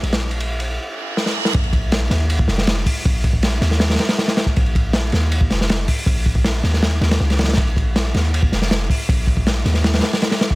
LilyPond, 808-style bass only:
\new Staff \with { instrumentName = "808-style bass" } { \clef bass \time 4/4 \key bes \minor \tempo 4 = 159 bes,,2 r2 | bes,,4. ees,4 f,,4 r8 | bes,,4. ees,4 r4. | bes,,4. ees,4 f,,4 r8 |
bes,,4. ees,4 ees,8 des,4 | bes,,4. ees,4 f,,4 r8 | bes,,4. ees,4 r4. | }